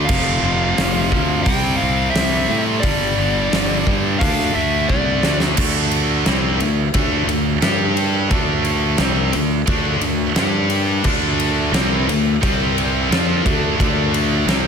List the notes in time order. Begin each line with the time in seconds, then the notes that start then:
0.05 F1 F2 F5, crash
0.09 C3 F3, kick
0.43 F1 F2 C3 F3
0.77 F1 F2 C3 F3, snare, open hi-hat
1.10 D2 F2 C3 F3, kick
1.44 C2 C3 G3 C4 G5, kick, open hi-hat
1.77 F5
1.81 C2 C3 G3 C4
2.10 C2 C3 E5
2.14 G3 C4, snare, open hi-hat
2.48 A2 C3 G3 C4
2.80 G1 D5, kick, open hi-hat
2.85 G2 D3 G3
3.17 G1 G2 D3 G3
3.52 G1 G2 D3 G3, snare, open hi-hat
3.86 G2 D3 G3, kick
4.19 D2 D3 A3 D4 F5, kick, open hi-hat
4.39 snare
4.54 D2 D3 A3 D4 E5
4.88 C2 D3 A3 D4 D5, kick
5.23 D2 D3 A3 D4, snare
5.40 snare
5.57 D2 D3 A3 D4, kick, crash
5.91 ride
6.26 C2 C3 G3 C4, snare, ride
6.60 D2 D3 A3, ride
6.94 D2 D3 A3 D4, kick, ride
7.27 D2 D3 A3, ride
7.62 G2 G3 D4 G4, snare, ride
7.97 ride
8.30 D2 D3 A3 D4, kick, ride
8.65 ride
8.98 C2 C3 G3 C4, snare, ride
9.33 D2 D3 A3, ride
9.67 D2 D3 A3 D4, kick, ride
10.00 D2 D3 A3, ride
10.36 G2 G3 D4 G4, snare, ride
10.70 ride
11.04 D2 D3 A3 D4, kick, crash
11.40 ride
11.72 C2 C3 G3 C4, snare, ride
12.07 D2 D3 A3, ride
12.42 C2 C3 G3 C4, kick, ride
12.78 ride
13.10 F2 F3 C4 F4, snare, ride
13.45 D2 D3 A3 D4, kick, ride
13.78 D2 D3 A3 D4, kick, ride
14.14 ride
14.47 C2 C3 G3 C4, snare, ride